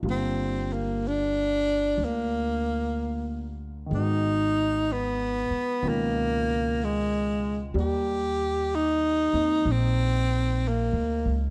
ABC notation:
X:1
M:4/4
L:1/16
Q:"Swing" 1/4=62
K:Gphr
V:1 name="Tenor saxophone"
C2 B,2 D4 B,6 z2 | E4 _C4 B,4 A,3 z | G4 E4 C4 B,3 z |]
V:2 name="Upright piano"
[D,G,B,F]16 | [E,A,_C_G]8 [_C,E,_DF]8 | [G,B,Gd]6 [B,CE]8- [B,CE]2 |]
V:3 name="Upright bass" clef=bass
G,,,8 D,,8 | A,,,6 z2 _D,,8 | E,,6 _F,,2 B,,,4- (3B,,,2 D,,2 _D,,2 |]